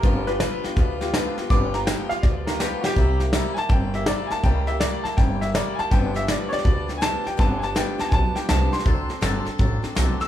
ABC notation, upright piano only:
X:1
M:4/4
L:1/8
Q:"Swing" 1/4=163
K:Gmix
V:1 name="Upright piano"
_B [D=B]6 z | d' _b g f d _B G [^FG]- | [^FG] z2 [_a=a] g e d [_a=a] | g e d a g e d [_a=a] |
g e d [^cd]2 z [_a=a] g | a [_a=a] g a [_a=a] g a c'- | c'3 z4 e' |]